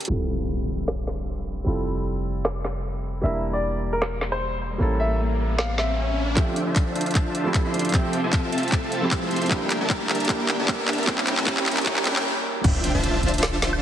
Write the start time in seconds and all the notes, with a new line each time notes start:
0.00 closed hi-hat
0.05 G3 C4, closed hi-hat
0.09 D1 E4 F4 A4, impact
0.88 snare
1.07 snare
1.64 F1 G3 C4 E4 F4
1.68 A4
2.45 snare
2.65 snare
3.21 E1 G3 A#3 D4 E4 A#4 E5, riser
3.53 D5
3.93 A#4
4.02 snare
4.21 snare
4.32 C5
4.78 A1 G3 A#3 C#4 E4
4.82 A4
5.00 E5
5.59 F5, snare
5.78 E5, snare
6.35 F3 A3 C4 D4 F4 C5 E5 G5, kick, clap, closed hi-hat, riser
6.39 G4
6.56 closed hi-hat
6.67 D4 F4 C5 E5 A5
6.76 kick, clap, closed hi-hat
6.95 D4 F4 C5 E5 A5, closed hi-hat
7.01 closed hi-hat
7.06 closed hi-hat
7.11 closed hi-hat
7.15 kick, clap, closed hi-hat
7.35 closed hi-hat
7.44 F3 A3 C4 E4
7.48 G4
7.54 kick, clap, closed hi-hat
7.65 D4 F4 C5 E5 C6
7.74 closed hi-hat
7.79 closed hi-hat
7.85 closed hi-hat
7.89 F3 A3, closed hi-hat
7.94 C4 F4 G4 A4 E5, kick, clap, closed hi-hat
8.13 closed hi-hat
8.24 C4 F4 A4 E5 A5
8.33 kick, clap, closed hi-hat
8.52 C4 F4 A4 E5 A5, closed hi-hat
8.58 closed hi-hat
8.63 closed hi-hat
8.68 closed hi-hat
8.72 kick, clap, closed hi-hat
8.92 closed hi-hat
9.01 F3 A3 C4 E4 G4
9.11 kick, clap, closed hi-hat
9.22 C4 F4 A4 E5 C6
9.31 closed hi-hat
9.36 closed hi-hat
9.42 closed hi-hat
9.46 G3 A#3, closed hi-hat
9.51 D4 E4 G4 E5, kick, clap, closed hi-hat
9.70 clap, closed hi-hat
9.81 D4 G4 A#4 E5 A5
9.90 kick, clap, closed hi-hat
10.09 D4 G4 A#4 E5 A5, clap, closed hi-hat
10.15 closed hi-hat
10.20 closed hi-hat
10.25 G3 A#3, closed hi-hat
10.29 D4 E4 G4 A#4, kick, clap, closed hi-hat
10.49 clap, closed hi-hat
10.59 D4 G4 A#4 E5 A5
10.68 kick, clap, closed hi-hat
10.88 D4 G4 A#4 E5 A5, clap, closed hi-hat
10.93 closed hi-hat
10.98 closed hi-hat
11.03 G3 A#3, closed hi-hat
11.07 C#4 E4 G4 A#4 E5 G5, kick, clap, closed hi-hat
11.18 clap
11.27 clap, closed hi-hat
11.37 C#4 G4 A#4 E5 A5, clap
11.45 G3 A#3 C#4 E4 G4 A#4 E5 G5, kick, clap, closed hi-hat
11.57 clap
11.66 clap, closed hi-hat
11.71 closed hi-hat
11.77 C#4 G4 A#4 E5 A5, clap, closed hi-hat
11.81 G3 A#3, closed hi-hat
11.86 C#4 E4 G4 A#4 E5 G5, kick, clap, closed hi-hat
11.96 clap
12.04 G3 A#3 C#4 E4 G4 A#4 E5 G5, clap, closed hi-hat
12.08 G4
12.16 clap
12.64 D1 D4 F4 C5 E5 G5, kick, closed hi-hat, crash, impact
12.84 closed hi-hat
12.95 D1 D4 F4 C5 E5 A5
13.04 closed hi-hat
13.23 D1 D4 F4 C5 E5 A5, closed hi-hat
13.28 closed hi-hat
13.34 closed hi-hat
13.38 closed hi-hat
13.43 snare, closed hi-hat
13.62 snare, closed hi-hat
13.73 high woodblock